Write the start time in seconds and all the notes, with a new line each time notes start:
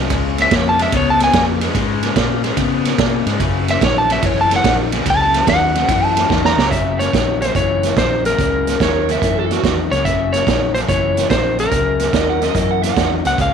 Already playing: C2
0.10 C#2 C#3 G#3, kick, snare, ride
0.38 E5, snare, ride
0.51 F2 C#3 A#3 C#5, kick, snare, ride
0.69 A5
0.79 C#3 G#3 E5, snare, ride
0.92 C#2 C#3 B3, kick, snare, ride
0.97 C#5
1.10 A5
1.20 G#5, snare, ride
1.33 F2 C#3 A#3, kick, snare, ride
1.61 C#3 G#3, snare, ride
1.75 G#2 C#3 G#3, kick, snare, ride
2.03 snare, ride
2.16 A#2 C#3 A#3, kick, snare, ride
2.44 C#3 G#3, snare, ride
2.57 C#3 B3, kick, snare, ride
2.85 snare, ride
2.98 B2 C#3 A#3, kick, snare, ride
3.26 G#2 C#3 G#3, snare, ride
3.40 F#1 F#2 C#3, kick, snare, ride
3.68 E5, snare, ride
3.81 A#1 F#2 D#3 C#5, kick, snare, ride
3.98 A5
4.09 F#2 C#3 E5, snare, ride
4.23 F#1 F#2 E3 C#5, kick, snare, ride
4.41 A5
4.51 snare, ride
4.56 F#5
4.64 A#1 F#2 D#3, kick, snare, ride
4.92 F#2 C#3, snare, ride
5.05 C#2 F#2 C#3, kick, snare, ride
5.10 A5
5.22 A5
5.34 snare, ride
5.47 D#2 F#2 D#3 F#5, kick, snare, ride
5.75 F#2 C#3, snare, ride
5.89 F#2 E3, kick, snare, ride
6.04 A5
6.17 snare, ride
6.30 E2 F#2 D#3, kick, snare
6.45 A#5, snare
6.57 C#2 F#2 C#3 C#5, snare
6.71 F#1 F#2 C#3 E5, kick, snare, closed hi-hat
6.99 C#5, snare, closed hi-hat
7.13 A#1 F#2 D#3, kick, snare, closed hi-hat
7.41 F#2 C#3 C5, snare, closed hi-hat
7.55 F#1 F#2 E3 C#5, kick, snare, closed hi-hat
7.83 snare, closed hi-hat
7.96 A#1 F#2 D#3 C5, kick, snare, closed hi-hat
8.25 F#2 C#3 A#4, snare, closed hi-hat
8.38 C#2 F#2 C#3, kick, snare, closed hi-hat
8.67 snare, closed hi-hat
8.80 D#2 F#2 D#3 C#5, kick, snare, closed hi-hat
9.09 F#2 C#3 E5, snare, closed hi-hat
9.22 F#2 E3, kick, snare, closed hi-hat
9.39 A4
9.51 F#4, snare, closed hi-hat
9.64 E2 F#2 D#3, kick, snare, closed hi-hat
9.91 C#2 F#2 C#3 C#5, snare, closed hi-hat
10.05 F#1 F#2 C#3 E5, kick, snare, closed hi-hat
10.33 C#5, snare, closed hi-hat
10.47 A#1 F#2 D#3, kick, snare, closed hi-hat
10.74 F#2 C#3 C5, snare, closed hi-hat
10.88 F#1 F#2 E3 C#5, kick, snare, closed hi-hat
11.17 snare, closed hi-hat
11.30 A#1 F#2 D#3 C5, kick, snare, closed hi-hat
11.58 F#2 C#3 A#4, snare, closed hi-hat
11.71 C#2 F#2 C#3, kick, snare, closed hi-hat
11.99 snare, closed hi-hat
12.13 D#2 F#2 D#3 D#5, kick, snare, closed hi-hat
12.29 F#5
12.41 F#2 C#3 D#5, snare, closed hi-hat
12.54 F#2 E3 D#5, kick, snare, closed hi-hat
12.71 F#5
12.83 F#5, snare, closed hi-hat
12.96 E2 F#2 D#3, kick, snare, closed hi-hat
13.25 C#2 F#2 C#3 F#5, snare, closed hi-hat
13.38 C#2 C#3 G#3 F5, kick, snare, closed hi-hat